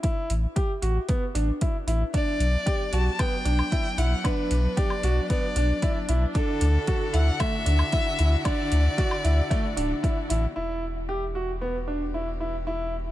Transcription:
0.03 E4, kick, closed hi-hat
0.30 A1, closed hi-hat
0.56 G4, kick, closed hi-hat
0.82 A1 F#4, closed hi-hat
1.09 B3, kick, closed hi-hat
1.35 A1 D4, closed hi-hat
1.61 E4, kick, closed hi-hat
1.87 A1 E4, closed hi-hat
2.14 F#3 B3 D4 D5, kick, closed hi-hat
2.40 B1, closed hi-hat
2.66 G4, kick, closed hi-hat
2.93 B1 F#4 A5, closed hi-hat
3.19 B3 G5, kick, closed hi-hat, low woodblock
3.45 B1 D4, closed hi-hat
3.59 low woodblock
3.72 E4, kick, closed hi-hat
3.98 B1 E4 F#5, closed hi-hat
4.24 D4 B4, kick, closed hi-hat, low woodblock
4.51 B1, closed hi-hat
4.77 G4 D5, kick, closed hi-hat
4.90 low woodblock
5.03 B1 F#4, closed hi-hat
5.30 B3 D5, kick, closed hi-hat
5.56 B1 D4, closed hi-hat
5.82 E4, kick, closed hi-hat
6.09 B1 E4, closed hi-hat
6.34 D3 D4 E4 F#4 A4, kick, closed hi-hat
6.61 D2, closed hi-hat
6.87 F#4, kick, closed hi-hat
7.14 D2 E4 F#5, closed hi-hat
7.40 A3 E5, kick, closed hi-hat, low woodblock
7.66 D2 D4, closed hi-hat
7.79 low woodblock
7.92 E4, kick, closed hi-hat
8.19 D2 E4, closed hi-hat
8.44 D4 D5, kick, closed hi-hat, low woodblock
8.72 D2, closed hi-hat
8.98 F#4, kick, closed hi-hat
9.11 low woodblock
9.24 D2 E4, closed hi-hat
9.50 A3, kick, closed hi-hat
9.77 D1 D4, closed hi-hat
10.03 E4, kick, closed hi-hat
10.30 A1 E4, closed hi-hat
10.56 E1 E3 B3 E4 F#4 G4
11.09 G4
11.35 F#4
11.61 B3
11.88 D4
12.14 E4
12.40 E4
12.67 E4

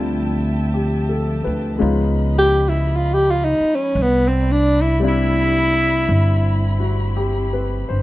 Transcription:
Already playing: D2 F3 G3 A3 C4 E4 F4 E5 G5 A5
0.74 G4
1.09 A4
1.44 D2 B4
1.79 C#2 G#3 B3 C#4 D#4 F4 D#5 B5
2.38 G4
2.69 E4
2.97 F4
3.14 G4
3.31 F4
3.45 D#4
3.60 muted upright bass stroke
3.75 C#4
3.94 C2 E4 D5 B5
4.03 B3
4.28 C4
4.52 D4
4.82 E4
5.00 G3 C4 D4
5.04 E4
5.09 E4
6.09 G1 C4
6.80 F#4
7.17 G4
7.53 B4
7.89 G1 C5

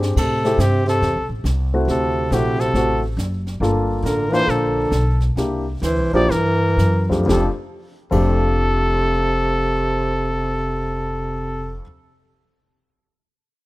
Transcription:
Already playing: G2 C4 D4 G4 G#4
0.03 snare
0.16 A2 C3 A4, brush sweep, kick, snare, crash
0.45 A3 C4 E4 G4, snare
0.58 G2 C3 G4, snare, hi-hat pedal
0.86 C3 A4, snare
1.01 E2, brush sweep, snare
1.15 C2
1.29 A1
1.44 C2, snare, hi-hat pedal
1.74 A3 C4 E4 F#4
1.87 D2 C3 A4, brush sweep, snare
2.31 A#1 C3 A3 C4 E4 F#4 G4, snare, hi-hat pedal
2.59 C3 A4, snare
2.74 A1 A3 C4 E4 F#4, brush sweep, snare
3.17 F#1, snare, hi-hat pedal
3.47 snare
3.60 G1 A#3 D4 F4 A4, brush sweep, snare
4.03 A1 D3 A#4, snare, hi-hat pedal
4.30 E3 A#3 D4 F4 C5, snare
4.47 A#1 D3 A4, brush sweep, snare
4.91 B1, snare, hi-hat pedal
5.20 snare
5.36 C2 A#3 D4 E4 G4, brush sweep, snare
5.82 D2 E3 C5, snare, hi-hat pedal
5.97 C2
6.13 A#1 F3 A#3 D4 E4 G4 D5
6.29 G2 E3 A#4, brush sweep, snare
6.77 F#2, snare, hi-hat pedal
7.09 F2 A3 C4 D4 G4, kick, snare
7.26 F1 F2 C3 F3 A3 D4 G4, kick, snare
7.31 A4
8.11 F1 F2 C3 F3 A3 D4 G4 A4, kick, crash

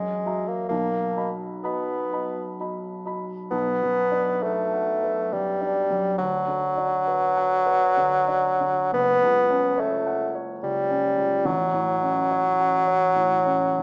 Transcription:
Already playing: F#2 G#3
0.26 F#4 E5 A#5
0.48 A#3
0.69 B1 A#3
1.16 F#4 D#5 B5
1.64 B3 F#4 D#5 B5
2.13 F#4 D#5 B5
2.60 F#4 D#5 B5
3.05 F#4 D#5 B5
3.51 B1 B3
3.83 F#2
4.11 D4
4.43 A3 B4
4.74 F#5
5.04 B4
5.32 F#2 G3
5.61 D4
5.90 F#2
6.18 D2 F#3
6.48 D3
6.77 D4
7.08 B4
7.37 F#5
7.67 B4
7.97 D3
8.27 D4
8.61 D3
8.92 F#1 B3
9.23 C#2
9.50 C#4
9.78 A3 C#5
10.07 F#5
10.35 C#5
10.62 C#2 G3
10.90 C#4
11.18 C#2
11.45 A1 F#3
11.74 A2
12.02 C#4
12.32 C#5
12.61 F#5
12.88 C#5
13.16 A2
13.46 C#4
13.78 A2

